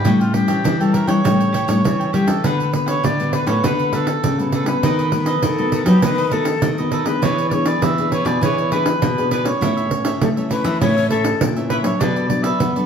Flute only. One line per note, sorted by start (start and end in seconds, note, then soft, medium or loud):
5.36 5.45 B4 medium
5.44 5.86 A4 medium
5.87 6.05 G4 medium
6.04 6.34 B4 medium
6.32 6.77 A4 medium
10.21 10.28 A4 medium
10.50 10.78 B4 medium
10.81 11.09 C#5 loud
11.10 11.52 A4 medium